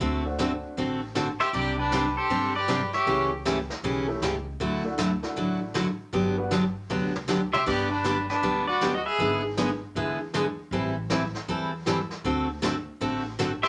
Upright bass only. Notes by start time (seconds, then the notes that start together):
0.00 D2
0.77 A1
1.53 C2
2.29 G1
3.06 C#2
3.83 B1
4.21 C#2
4.60 D2
5.36 A1
6.13 G1
6.89 D2
7.66 G1
8.42 D2
9.19 G#1
9.95 E2
10.71 A1
11.48 E2
12.24 D2
13.00 A1